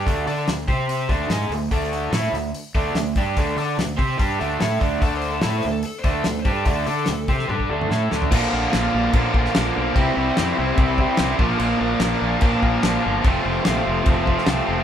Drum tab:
CC |----------------|----------------|----------------|----------------|
HH |o-o-o-o-o-o-o-o-|o-o-o-o-o-o-o-o-|o-o-o-o-o-o-o-o-|o-o-o-o-o-o-o-o-|
SD |----o-------o---|----o-------o---|----o-------o---|----o-------o---|
T1 |----------------|----------------|----------------|----------------|
T2 |----------------|----------------|----------------|----------------|
FT |----------------|----------------|----------------|----------------|
BD |o-----o---o-----|o---------o---o-|o-----o-o-----o-|o---------o---o-|

CC |----------------|x---x---x---x---|x---x---x---x---|x---x---x---x---|
HH |o-o-o-o---------|----------------|----------------|----------------|
SD |----o--o----o-o-|----o------oo---|----o-------o---|----o-------o---|
T1 |--------o-------|----------------|----------------|----------------|
T2 |-----------o----|----------------|----------------|----------------|
FT |---------------o|----------------|----------------|----------------|
BD |o-----o--o------|o-------o-o-----|o-------o-o---o-|--------o-o-----|

CC |x---x---x---x---|
HH |----------------|
SD |----o------oo---|
T1 |----------------|
T2 |----------------|
FT |----------------|
BD |o-------o-o-----|